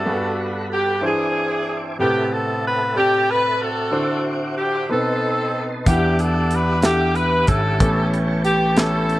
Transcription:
Already playing: D4 F#4 A4
0.04 G2 G3 B3 F#4 G#4 A4 F#5 B5
0.13 A4
0.73 G4
1.00 E3 D4 E4 G#4 C5 E5 G#5 D6
1.05 C4 G#4
1.99 A2 C3 B3 C4 G4 A4 B4 E5 A5
2.33 A4
2.66 B4
2.94 C4 G4 A4 D5
3.30 B4
3.62 C4 F#4 A4
3.91 D3 D4 E4 F#4 C5 E5 F#5 D6
4.57 G4
4.89 B2 C4 D#4 A4 B4 D#5 A5 C6
5.86 E2 E3 B3 D4 E4 G4 E5 F#5 D6, kick, closed hi-hat
6.19 A4, closed hi-hat
6.51 B4, closed hi-hat
6.82 D4 E4 G4 A4 F#5, snare, closed hi-hat
7.15 B4, closed hi-hat
7.47 G#1 C#4 E4 A4, kick, closed hi-hat
7.80 A1 A2 B3 C#4 G4 A4 B4 G5 A5 C#6, kick, closed hi-hat
8.14 closed hi-hat
8.45 G4, closed hi-hat
8.76 B3 C#4 E4 G4 A4, snare, closed hi-hat
9.09 closed hi-hat

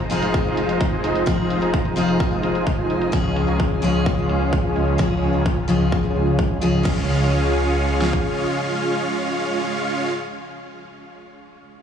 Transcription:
Already playing: F3 C4 D#4 G#4
0.10 F1 F3 G#3 C4 D#4 F4 G#4 C5 F5, closed hi-hat
0.22 closed hi-hat
0.34 kick, closed hi-hat
0.46 F1 G#3 D#4 F4 C5 F5
0.57 F1 G#3 D#4 F4 C5 F5, closed hi-hat
0.69 closed hi-hat
0.81 kick, closed hi-hat
0.92 F1 G#3 D#4 F4 C5 G#5
1.04 F1 G#3 D#4 F4 C5 D#5, closed hi-hat
1.16 closed hi-hat
1.26 F1 F3 G#3 C4 D#4 F4 G#4 C5 F5, kick, closed hi-hat
1.50 closed hi-hat
1.62 F1 G#3 D#4 F4 C5 A#5, closed hi-hat
1.74 kick, closed hi-hat
1.85 closed hi-hat
1.96 F1 F3 G#3 C4 D#4 F4 G#4 C5 F5, closed hi-hat
2.09 closed hi-hat
2.20 kick, closed hi-hat
2.32 F1 G#3 D#4 F4 C5 F5
2.43 F1 G#3 D#4 F4 C5 F5, closed hi-hat
2.55 closed hi-hat
2.67 kick, closed hi-hat
2.78 F1 G#3 D#4 F4 C5 G#5
2.90 F1 G#3 D#4 F4 C5 D#5, closed hi-hat
3.02 closed hi-hat
3.12 C#2 C#3 F3 G#3 C#4 F4 G#4 C#5 F5, kick, closed hi-hat
3.36 closed hi-hat
3.48 C#2 G#3 C#4 F4 C#5 A#5, closed hi-hat
3.60 kick, closed hi-hat
3.71 closed hi-hat
3.82 C#2 F3 G#3 C#4 F4 G#4 C#5 F5, closed hi-hat
3.95 closed hi-hat
4.06 kick, closed hi-hat
4.18 C#2 G#3 C#4 F4 C#5 F5
4.29 C#2 G#3 C#4 F4 C#5 F5, closed hi-hat
4.41 closed hi-hat
4.53 kick, closed hi-hat
4.64 C#2 G#3 C#4 F4 C#5 G#5
4.76 C#2 G#3 C#4 F4 C#5 D#5, closed hi-hat
4.88 closed hi-hat
4.98 C#2 F3 G#3 C#4 F4 G#4 C#5 F5, kick, closed hi-hat
5.22 closed hi-hat
5.34 C#2 G#3 C#4 F4 C#5 A#5, closed hi-hat
5.46 kick, closed hi-hat
5.57 closed hi-hat
5.68 C#2 F3 G#3 C#4 F4 G#4 C#5 F5, closed hi-hat
5.81 closed hi-hat
5.92 kick, closed hi-hat
6.04 C#2 G#3 C#4 F4 C#5 F5, closed hi-hat
6.16 C#2 G#3 C#4 F4 C#5 F5, closed hi-hat
6.27 closed hi-hat
6.39 kick
6.50 C#2 G#3 C#4 F4 C#5 G#5, closed hi-hat
6.61 C#2 F3 G#3 C#4 F4 G#4 C#5 D#5, closed hi-hat
6.74 closed hi-hat
6.83 C#2 C#3 F3 G#3 C#4 F4 G#4 C#5 F5, kick, crash
8.02 snare
8.13 kick

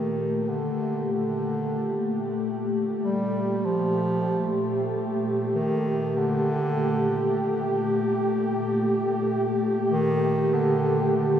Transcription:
Already playing: A#2 D#3 A3 G4
0.48 D3
1.12 D3
3.02 G3
3.65 F3
5.54 D#3
6.17 D3
9.91 D#3
10.54 D3
11.16 D3

